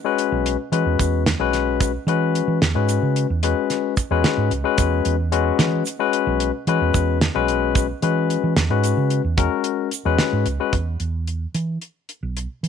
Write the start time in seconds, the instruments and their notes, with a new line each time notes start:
0.05 tine electric piano G#3 C#4 F#4 B4
0.18 closed hi-hat
0.32 fingered electric bass B1
0.46 closed hi-hat
0.72 fingered electric bass E3, tine electric piano G#3 C#4 F#4 B4, closed hi-hat
0.86 fingered electric bass E2
0.99 fingered electric bass E2, kick, closed hi-hat, shaker
1.26 snare, closed hi-hat
1.39 fingered electric bass B1, tine electric piano G#3 C#4 F#4 B4
1.53 snare, closed hi-hat, shaker
1.81 kick, closed hi-hat, shaker
2.07 fingered electric bass E3, tine electric piano G#3 C#4 F#4 B4, closed hi-hat
2.35 closed hi-hat
2.48 fingered electric bass E3
2.62 fingered electric bass E2, snare, closed hi-hat
2.75 fingered electric bass G#2, tine electric piano G#3 C#4 F#4 B4
2.89 closed hi-hat, shaker
3.02 fingered electric bass C#3
3.16 closed hi-hat
3.30 fingered electric bass E2
3.43 tine electric piano G#3 C#4 F#4 B4, closed hi-hat
3.70 snare, closed hi-hat
3.97 kick, closed hi-hat, shaker
4.11 fingered electric bass E2, tine electric piano G#3 C#4 F#4 B4
4.24 snare, closed hi-hat
4.37 fingered electric bass G#2
4.51 fingered electric bass C#2, closed hi-hat, shaker
4.64 tine electric piano G#3 C#4 F#4 B4
4.78 fingered electric bass E2, kick, closed hi-hat, shaker
5.05 fingered electric bass E2, closed hi-hat
5.32 tine electric piano G#3 C#4 F#4 B4, closed hi-hat
5.59 fingered electric bass E3, snare, closed hi-hat
5.86 closed hi-hat, shaker
5.99 tine electric piano G#3 C#4 F#4 B4
6.13 closed hi-hat
6.27 fingered electric bass B1
6.40 closed hi-hat
6.67 fingered electric bass E3, tine electric piano G#3 C#4 F#4 B4, closed hi-hat
6.81 fingered electric bass E2
6.94 fingered electric bass E2, kick, closed hi-hat, shaker
7.21 snare, closed hi-hat
7.34 fingered electric bass B1, tine electric piano G#3 C#4 F#4 B4
7.48 closed hi-hat, shaker
7.75 kick, closed hi-hat, shaker
8.02 fingered electric bass E3, tine electric piano G#3 C#4 F#4 B4, closed hi-hat
8.30 closed hi-hat
8.44 fingered electric bass E3
8.57 fingered electric bass E2, snare, closed hi-hat
8.70 fingered electric bass G#2, tine electric piano G#3 C#4 F#4 B4
8.84 closed hi-hat, shaker
8.97 fingered electric bass C#3
9.10 closed hi-hat
9.24 fingered electric bass E2
9.37 tine electric piano G#3 C#4 F#4 A#4, kick, closed hi-hat, shaker
9.64 closed hi-hat
9.91 closed hi-hat, shaker
10.05 fingered electric bass E2, tine electric piano G#3 C#4 F#4 B4
10.19 snare, closed hi-hat, shaker
10.33 fingered electric bass G#2
10.46 fingered electric bass C#2, closed hi-hat, shaker
10.60 tine electric piano G#3 C#4 F#4 B4
10.73 fingered electric bass E2, kick, closed hi-hat
11.00 fingered electric bass E2, closed hi-hat
11.28 closed hi-hat
11.54 fingered electric bass E3, closed hi-hat
11.81 closed hi-hat
12.09 closed hi-hat
12.23 fingered electric bass B1
12.37 closed hi-hat
12.63 fingered electric bass E3, closed hi-hat